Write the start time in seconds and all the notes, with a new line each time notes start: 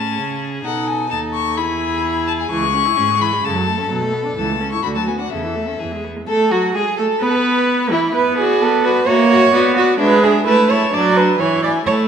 Already playing: A2 C#4 G#4 A5
0.19 C#3
0.64 B2 D#4 A4 F#5
0.87 G#5
1.11 D#2 D#4 A4 A5
1.34 C#6
1.57 E2 E4 G#4 B5
2.27 A5
2.40 G#5
2.51 C#2 E3 G#4 C#6
2.63 G#3
2.74 C#4
2.86 E4
2.97 G#2 C#4
3.09 G#3
3.21 E3 B5
3.33 G#3
3.44 F#2 C#3 A4 A5
3.55 F#3
3.67 A3
3.79 C#4
3.90 B2 F#3
4.01 A3
4.13 B3
4.25 D4
4.37 C#2 E3 A5
4.49 A3
4.61 C#4
4.72 E4 C#6
4.83 D2 D3 F#4 B5
4.96 F#3 A5
5.07 B3 G#5
5.19 D4 F#5
5.30 E2 C#3 A4 E5
5.44 E3
5.55 A3
5.68 C#4
5.79 E2 E3 G#4
5.92 G#3
6.04 B3
6.16 G#3
6.28 A3 A4
6.51 F#3 F#4
6.75 G#3 G#4
6.98 A3 A4
7.21 B3 B4
7.29 A4
7.35 B4
7.91 E3 E4
8.14 B3 B4
8.37 F#4 G#4 D5
8.61 B3 A4
8.83 F#4 B4 D5
9.06 A#3 F#4 C#5 E5
9.29 F#4 E5
9.53 B3 F#4 D5
9.76 F#4 D5
9.98 G#3 D4 B4 E5
10.21 D4 G#4 E5
10.46 A3 E4 B4 A5
10.69 E4 C#5 A5
10.93 F#3 D4 D5 A5
11.16 D4 B4 A5
11.39 E3 E4 C#5 G#5
11.62 E4 D5 G#5
11.85 A3 E4 C#5 A5